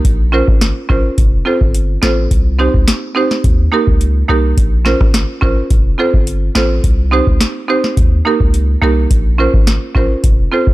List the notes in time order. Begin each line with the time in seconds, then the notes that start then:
0.05 A#1, kick, closed hi-hat
0.32 C#4 F4 A#4 C5
0.48 G#1, kick
0.61 snare, closed hi-hat
0.89 A#1 C#4 F4 A#4 C5, kick
1.18 F1, kick, closed hi-hat
1.45 C4 F4 A4 C5
1.61 G1, kick
1.74 closed hi-hat
2.02 A1 C4 F4 A4 C5, snare
2.31 C2, kick, closed hi-hat
2.59 C4 D#4 G4 C5
2.74 C#2, kick
2.88 snare, closed hi-hat
3.15 C4 D#4 G4 C5
3.31 snare
3.44 D#2, kick, closed hi-hat
3.72 A#3 D#4 G4 A#4
3.87 C#2, kick
4.01 closed hi-hat
4.28 C2 A#3 D#4 G4 A#4
4.57 A#1, kick, closed hi-hat
4.85 C#4 F4 A#4 C5, snare
5.01 G#1, kick, cross-stick
5.14 snare, closed hi-hat
5.41 A#1 C#4 F4 A#4 C5, kick
5.71 F1, kick, closed hi-hat
5.98 C4 F4 A4 C5
6.14 G1, kick
6.27 closed hi-hat
6.55 A1 C4 F4 A4 C5, snare
6.84 C2, kick, closed hi-hat
7.11 C4 D#4 G4 C5
7.27 C#2, kick
7.41 snare, closed hi-hat
7.68 C4 D#4 G4 C5
7.84 snare
7.97 D#2, kick, closed hi-hat
8.25 A#3 D#4 G4 A#4
8.40 C#2, kick
8.54 closed hi-hat
8.81 C2 A#3 D#4 G4 A#4
9.10 A#1, kick, closed hi-hat
9.38 C#4 F4 A#4 C5
9.54 G#1, kick
9.67 snare, closed hi-hat
9.95 A#1 C#4 F4 A#4 C5, kick
10.24 F1, kick, closed hi-hat
10.52 C4 F4 A4 C5
10.67 G1, kick